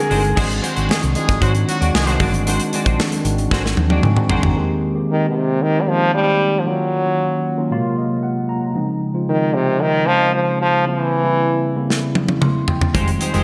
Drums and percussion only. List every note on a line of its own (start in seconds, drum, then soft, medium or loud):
0.11 open hi-hat medium
0.11 high conga medium
0.25 closed hi-hat soft
0.37 kick loud
0.37 crash loud
0.37 muted conga medium
0.50 closed hi-hat medium
0.64 closed hi-hat medium
0.64 muted conga soft
0.76 closed hi-hat soft
0.89 snare loud
0.89 high conga medium
1.03 closed hi-hat medium
1.15 closed hi-hat medium
1.15 muted conga soft
1.29 kick loud
1.29 snare soft
1.29 closed hi-hat medium
1.42 kick loud
1.42 closed hi-hat medium
1.55 closed hi-hat medium
1.69 closed hi-hat medium
1.69 muted conga soft
1.82 closed hi-hat medium
1.95 snare loud
1.95 high conga medium
2.07 snare soft
2.07 closed hi-hat medium
2.20 kick medium
2.20 open hi-hat medium
2.20 high conga medium
2.34 closed hi-hat soft
2.47 closed hi-hat medium
2.47 muted conga medium
2.60 closed hi-hat medium
2.73 closed hi-hat medium
2.73 muted conga medium
2.86 kick loud
2.86 closed hi-hat medium
3.00 snare loud
3.00 high conga medium
3.12 closed hi-hat medium
3.25 closed hi-hat medium
3.38 closed hi-hat soft
3.51 kick loud
3.51 snare medium
3.66 snare medium
3.77 high tom medium
3.77 muted conga medium
3.90 high tom medium
4.03 mid tom medium
4.03 high conga medium
4.17 mid tom medium
4.30 floor tom loud
4.30 high conga medium
4.43 floor tom medium
11.90 snare medium
12.15 high tom medium
12.29 high tom medium
12.42 mid tom medium
12.68 floor tom medium
12.81 floor tom loud
12.95 kick loud
12.95 closed hi-hat loud
12.95 muted conga medium
13.08 closed hi-hat medium
13.21 closed hi-hat medium
13.21 muted conga medium
13.34 closed hi-hat medium